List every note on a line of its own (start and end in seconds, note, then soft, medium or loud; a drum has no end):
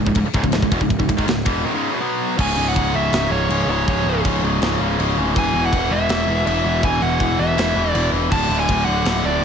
0.06 0.15 C#1 medium
0.06 0.15 C#2 medium
0.06 0.16 G#2 medium
0.06 kick medium
0.15 0.24 C#1 medium
0.15 0.24 C#2 medium
0.15 0.26 G#2 medium
0.15 kick loud
0.15 ride loud
0.25 muted distorted electric guitar stroke medium
0.25 muted picked electric bass stroke soft
0.33 0.42 C#1 medium
0.33 0.42 C#2 medium
0.33 0.43 G#2 loud
0.33 kick loud
0.33 ride medium
0.43 0.52 C#1 medium
0.43 0.52 C#2 medium
0.43 0.52 G#2 medium
0.43 kick medium
0.52 0.61 C#1 medium
0.52 0.61 C#2 medium
0.52 0.62 G#2 medium
0.52 snare loud
0.52 ride medium
0.62 0.70 C#1 medium
0.62 0.71 C#2 medium
0.62 0.72 G#2 medium
0.62 kick medium
0.71 0.80 E1 loud
0.71 0.80 E2 loud
0.71 0.80 B2 loud
0.71 kick medium
0.71 ride medium
0.81 0.98 C#1 medium
0.81 0.96 C#2 medium
0.81 0.96 G#2 medium
0.81 kick medium
0.90 kick loud
0.90 ride loud
0.99 1.08 C#1 medium
0.99 1.08 C#2 medium
0.99 1.08 G#2 medium
0.99 kick medium
1.09 1.18 C#1 medium
1.09 1.17 C#2 medium
1.09 1.16 G#2 medium
1.09 kick medium
1.09 ride medium
1.17 1.27 G#1 loud
1.17 1.26 G#2 medium
1.17 1.26 D#3 loud
1.17 kick medium
1.27 1.45 C#1 medium
1.27 1.42 C#2 medium
1.27 1.42 G#2 medium
1.27 snare loud
1.27 ride loud
1.45 1.63 E1 medium
1.45 1.63 E2 loud
1.45 1.64 B2 loud
1.45 1.64 E3 loud
1.45 kick loud
1.45 ride medium
1.64 1.73 G#2 loud
1.64 1.73 D#3 loud
1.73 1.91 C#2 medium
1.73 1.91 G#2 medium
1.73 1.92 C#3 medium
1.91 2.00 E2 medium
1.91 1.99 B2 medium
2.00 2.37 B2 medium
2.00 2.37 F#3 loud
2.00 2.38 B3 loud
2.37 2.56 C#1 loud
2.37 2.56 C#2 medium
2.37 2.56 G#2 medium
2.37 2.57 C#3 loud
2.37 2.66 G#5 loud
2.37 kick loud
2.37 crash loud
2.37 china medium
2.56 2.75 C#1 loud
2.56 2.75 C#2 medium
2.56 2.74 G#2 medium
2.56 2.76 C#3 medium
2.68 2.93 F#5 loud
2.75 2.93 C#1 medium
2.75 2.94 C#2 loud
2.75 2.94 G#2 loud
2.75 2.95 C#3 loud
2.75 kick medium
2.75 china medium
2.94 3.12 C#1 medium
2.94 3.12 C#2 medium
2.94 3.12 G#2 medium
2.94 3.13 C#3 medium
2.94 3.31 E5 loud
3.12 3.29 C#1 medium
3.12 3.30 C#2 medium
3.12 3.31 G#2 loud
3.12 3.31 C#3 loud
3.12 snare loud
3.12 china medium
3.30 3.48 C#1 medium
3.30 3.49 C#2 medium
3.30 3.49 G#2 loud
3.30 3.50 C#3 medium
3.30 3.69 C#5 loud
3.49 3.66 C#1 medium
3.49 3.68 C#2 medium
3.49 3.69 G#2 loud
3.49 3.69 C#3 loud
3.49 china medium
3.67 3.85 C#1 loud
3.67 3.86 C#2 medium
3.67 3.86 G#2 medium
3.67 3.87 C#3 loud
3.67 4.21 C#5 medium
3.87 4.03 C#1 loud
3.87 4.05 C#2 loud
3.87 4.06 G#2 loud
3.87 4.07 C#3 loud
3.87 kick loud
3.87 china medium
4.04 4.22 C#1 loud
4.04 4.23 C#2 medium
4.04 4.24 G#2 medium
4.04 4.24 C#3 medium
4.25 4.41 C#1 medium
4.25 4.42 C#2 loud
4.25 4.42 G#2 loud
4.25 4.43 C#3 loud
4.25 kick medium
4.25 china medium
4.42 4.60 C#1 medium
4.42 4.61 C#2 medium
4.42 4.61 G#2 medium
4.42 4.61 C#3 medium
4.61 4.78 C#1 medium
4.61 4.79 C#2 loud
4.61 4.80 G#2 medium
4.61 4.80 C#3 loud
4.61 snare loud
4.61 china medium
4.79 4.97 C#1 medium
4.79 4.98 C#2 medium
4.79 4.99 G#2 medium
4.79 4.99 C#3 loud
4.98 5.16 C#1 medium
4.98 5.17 C#2 medium
4.98 5.17 G#2 loud
4.98 5.18 C#3 loud
4.98 china medium
5.17 5.35 D1 medium
5.17 5.35 C#2 medium
5.17 5.35 G#2 medium
5.17 5.35 C#3 medium
5.36 5.53 E1 loud
5.36 5.54 E2 medium
5.36 5.54 B2 loud
5.36 5.55 E3 loud
5.36 5.65 G#5 loud
5.36 kick loud
5.36 china medium
5.53 5.71 E1 loud
5.53 5.73 E2 medium
5.53 5.72 B2 medium
5.53 5.73 E3 medium
5.66 5.93 F#5 loud
5.72 5.90 E1 medium
5.72 5.91 E2 loud
5.72 5.91 B2 loud
5.72 5.92 E3 loud
5.72 kick medium
5.72 china medium
5.91 6.08 E1 medium
5.91 6.08 E2 medium
5.91 6.09 B2 medium
5.91 6.09 E3 loud
5.91 6.45 E5 loud
6.09 6.26 E1 medium
6.09 6.27 E2 loud
6.09 6.28 B2 loud
6.09 6.28 E3 medium
6.09 snare loud
6.09 china medium
6.27 6.45 E1 medium
6.27 6.44 E2 medium
6.27 6.45 B2 medium
6.27 6.45 E3 loud
6.46 6.64 E1 medium
6.46 6.64 E2 loud
6.46 6.64 B2 loud
6.46 6.64 E3 loud
6.46 6.85 E5 loud
6.46 china medium
6.64 6.82 E1 loud
6.64 6.81 E2 medium
6.64 6.81 B2 medium
6.64 6.82 E3 medium
6.82 7.01 E1 loud
6.82 7.00 E2 medium
6.82 7.01 B2 loud
6.82 7.01 E3 loud
6.82 7.02 G#5 loud
6.82 kick loud
6.82 china medium
7.01 7.19 E1 medium
7.01 7.19 E2 medium
7.01 7.20 B2 medium
7.01 7.20 E3 medium
7.01 7.39 F#5 medium
7.20 7.38 E1 medium
7.20 7.38 E2 loud
7.20 7.38 B2 loud
7.20 7.39 E3 loud
7.20 kick medium
7.20 china medium
7.39 7.56 E1 medium
7.39 7.56 E2 loud
7.39 7.56 B2 medium
7.39 7.56 E3 loud
7.39 7.91 E5 loud
7.57 7.75 E1 medium
7.57 7.75 E2 medium
7.57 7.75 B2 loud
7.57 7.75 E3 loud
7.57 snare loud
7.57 china medium
7.75 7.94 E1 medium
7.75 7.93 E2 medium
7.75 7.93 B2 medium
7.75 7.94 E3 loud
7.91 8.11 E1 medium
7.91 8.12 E2 loud
7.91 8.12 B2 loud
7.91 8.13 E3 loud
7.91 8.09 D5 loud
7.91 china medium
8.12 8.30 E1 loud
8.12 8.30 E2 medium
8.12 8.31 B2 medium
8.12 8.31 E3 medium
8.31 8.48 D1 loud
8.31 8.50 D2 medium
8.31 8.49 A2 loud
8.31 8.51 D3 loud
8.31 8.59 A5 loud
8.31 kick loud
8.31 china medium
8.31 crash loud
8.49 8.67 D1 loud
8.49 8.68 D2 medium
8.49 8.68 A2 medium
8.49 8.69 D3 medium
8.59 8.85 G#5 loud
8.69 8.86 D1 medium
8.69 8.86 D2 loud
8.69 8.86 A2 loud
8.69 8.87 D3 loud
8.69 kick loud
8.69 china medium
8.85 9.04 D1 medium
8.85 9.05 D2 medium
8.85 9.05 A2 medium
8.85 9.06 D3 loud
8.85 9.25 F#5 loud
9.05 9.23 D1 medium
9.05 9.24 D2 loud
9.05 9.24 A2 loud
9.05 9.25 D3 loud
9.05 snare loud
9.05 china medium
9.23 9.41 D1 medium
9.23 9.43 D2 medium
9.23 9.43 A2 medium
9.23 9.43 D3 medium
9.23 9.45 D5 loud